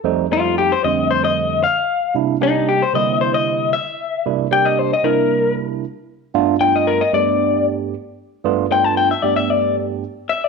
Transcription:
X:1
M:4/4
L:1/16
Q:1/4=114
K:Cmix
V:1 name="Clean electric guitar"
z2 F2 G c _e2 c e3 f4 | z2 _E2 G c _e2 c e3 =e4 | z2 g _e c e B4 z6 | z2 g _e B e d4 z6 |
z2 g a g e d e d2 z4 e d |]
V:2 name="Tine electric piano"
[F,,G,A,C_E]2 [F,,G,A,CE]3 z [F,,D,G,A,C]6 z4 | [C,G,B,DE]2 [C,G,B,DG]3 z [C,D,G,B,E]6 z4 | [C,G,B,DE]2 [C,G,B,DG]3 z [C,G,B,DE]6 z4 | [G,,A,=B,DF]2 [G,,A,B,DF]3 z [G,,A,B,DG]6 z4 |
[G,,A,=B,DF]2 [G,,A,B,DF]3 z [G,,A,B,DG]6 z4 |]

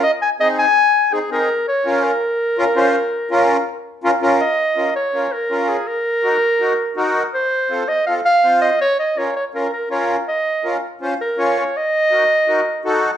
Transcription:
X:1
M:4/4
L:1/16
Q:1/4=164
K:Bbm
V:1 name="Clarinet"
e2 a2 e2 a6 A2 B2- | B2 d4 B8- B2- | B12 z4 | e6 d4 B4 A2 |
B12- B2 z2 | c6 e2 f2 f4 e2 | d2 e2 d2 d2 B2 B2 d3 z | e6 z4 B4 d2 |
e12- e2 z2 |]
V:2 name="Accordion"
z4 [CEA]2 z6 [CEA]2 [CEA]2 | z4 [DFB]2 z6 [DFB]2 [DFc]2 | z4 [DFB]2 z6 [DFB]2 [DFB]2 | z4 [DFB]2 z2 [DFB]2 z2 [DFB]2 z2 |
z4 [EGB]2 z2 [EGB]2 z2 [EGB]2 z2 | z4 [CF=A]2 z2 [CFA]2 z2 [CFc]2 z2 | z4 [DFB]2 z2 [DFB]2 z2 [DFB]2 z2 | z4 [DFB]2 z2 [DFc]2 z2 [DFd]2 z2 |
z4 [EGB]2 z2 [EGB]2 z2 [EG=A]2 z2 |]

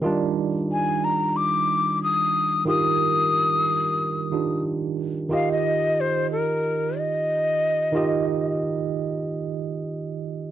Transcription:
X:1
M:4/4
L:1/16
Q:"Swing 16ths" 1/4=91
K:Eb
V:1 name="Flute"
z4 a2 b2 d'4 e'4 | e'12 z4 | f e3 c2 B4 e6- | e4 z12 |]
V:2 name="Tine electric piano"
[E,G,DEF]16 | [E,EFGB]8- [E,EFGB]2 [E,DEFG]6 | [E,EFGe]16 | [E,EFGe]16 |]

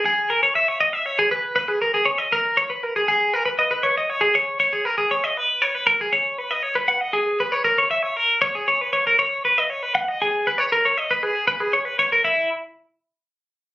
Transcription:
X:1
M:6/8
L:1/16
Q:3/8=78
K:B
V:1 name="Clean electric guitar"
G2 A c e c d e c G B2 | B G A G c d A2 c B A G | G2 A B d B c d c G c2 | c G A G c d B2 c B A G |
c2 B d c B f d G2 B c | A c e c A2 c G c B c A | c2 B d c B f d G2 B c | A c d B G2 B G c B c A |
E2 z8 z2 |]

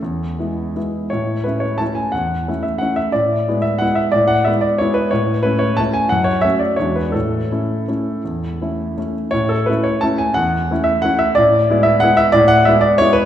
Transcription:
X:1
M:3/4
L:1/8
Q:1/4=178
K:A
V:1 name="Grand piano"
e4 z2 | c2 B c a g | f3 e f e | d3 e f e |
d f e d c B | c2 B c a g | f c e d c B | A6- |
A4- A z | c A B c a g | f3 e f e | d3 e f e |
d f e d c B |]
V:2 name="Grand piano"
E,,2 [G,B,E]2 [G,B,E]2 | A,,2 [A,CE]2 [A,CE]2 | E,,2 [A,CE]2 [A,CE]2 | A,,2 [G,B,E]2 [G,B,E]2 |
A,,2 [G,B,E]2 [G,B,E]2 | A,,2 [A,CE]2 [A,CE]2 | F,,2 [A,CF]2 [E,,G,DF]2 | A,,2 [A,CE]2 [A,CE]2 |
E,,2 [A,CE]2 [A,CE]2 | A,,2 [A,CE]2 [A,CE]2 | E,,2 [A,CE]2 [A,CE]2 | A,,2 [G,B,E]2 [G,B,E]2 |
A,,2 [G,B,E]2 [G,B,E]2 |]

